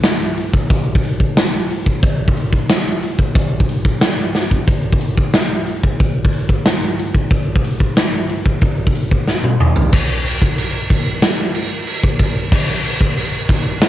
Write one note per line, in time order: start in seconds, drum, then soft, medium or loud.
0.04 snare loud
0.04 open hi-hat soft
0.38 open hi-hat soft
0.54 kick medium
0.70 kick loud
0.70 open hi-hat soft
0.95 kick medium
1.03 open hi-hat medium
1.20 kick medium
1.37 snare loud
1.37 open hi-hat medium
1.70 open hi-hat medium
1.86 kick medium
2.03 kick loud
2.03 open hi-hat soft
2.28 kick medium
2.37 open hi-hat medium
2.53 kick medium
2.69 snare loud
2.69 open hi-hat medium
3.02 open hi-hat soft
3.19 kick medium
3.35 kick loud
3.35 open hi-hat medium
3.60 kick medium
3.69 open hi-hat medium
3.85 kick medium
4.01 snare loud
4.01 open hi-hat medium
4.35 snare medium
4.51 kick medium
4.67 kick loud
4.67 open hi-hat medium
4.93 kick medium
5.01 open hi-hat medium
5.18 kick medium
5.34 snare loud
5.34 open hi-hat soft
5.67 open hi-hat soft
5.83 kick medium
6.00 kick loud
6.00 open hi-hat soft
6.25 kick medium
6.33 open hi-hat medium
6.49 kick medium
6.65 snare loud
6.65 open hi-hat medium
6.99 open hi-hat medium
7.15 kick medium
7.31 kick loud
7.31 open hi-hat medium
7.56 kick medium
7.64 open hi-hat medium
7.80 kick medium
7.97 snare loud
7.97 open hi-hat medium
8.29 open hi-hat soft
8.46 kick medium
8.61 kick loud
8.61 open hi-hat soft
8.87 kick medium
8.95 open hi-hat medium
9.11 kick medium
9.28 snare medium
9.44 high tom medium
9.60 mid tom medium
9.76 floor tom medium
9.93 kick loud
9.93 crash loud
9.93 china medium
10.26 china medium
10.42 kick medium
10.58 china medium
10.90 kick medium
10.90 china medium
11.22 snare loud
11.22 china medium
11.55 china medium
11.87 china medium
12.03 kick medium
12.19 kick medium
12.19 china medium
12.52 kick loud
12.52 crash loud
12.52 china medium
12.84 china medium
13.01 kick medium
13.17 china medium
13.49 kick medium
13.49 china medium
13.81 snare loud
13.81 china medium